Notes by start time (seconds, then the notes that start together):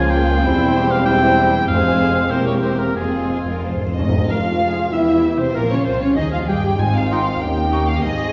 Already playing: C#2 F3 A#3 C#4 F4 G#4 G#5
0.11 G5
0.43 E1 E2 G3 C4 E4 C5
0.76 G4
0.91 F5
1.05 G3 C4 E4 G4 C5 G5
1.68 F1 F2 G#3 C4 G#4 C5 F5
2.30 E1 E2 A#3 C4 G4 A#4 C5
2.47 C#5
2.62 C5
2.79 A#4
2.96 F1 F2 G#3 C4 F4 G#4
3.07 F2
3.15 F2
3.22 F2
3.30 F2 G#4
3.38 F2
3.45 F2 A#4
3.52 F2
3.60 F2
3.65 F2 C4 C5
3.76 F2
3.84 F2
3.91 F2
3.97 F2 C#4 D#5
4.08 F2
4.16 F2
4.29 F2 F3 F4 A#4 F5
4.61 G#4
4.92 E2 E3 E4 G4 E5
5.38 C3 C4 C5
5.52 A#1 A#2 A#3 F4 A#4
5.57 A#3
5.68 C#3 C#4 C#5
5.85 C2 C3 C4 C5
5.99 C#3 C#4 C#5
6.04 C#4
6.15 D#2 D#3 D#4 G#4 D#5
6.32 F3 F4 F5
6.47 G2 G3 G4 G5
6.79 G#1 G#2 D#3 C4 D#4 F4 G#5
6.95 F5
7.09 D#4 G5 C6
7.25 F5
7.40 D#2 A#3 C#4 D#4 G4 G5
7.72 D#4 C#6
7.88 F5
8.02 G#1 G#2 C4 D#4 G#4 D#5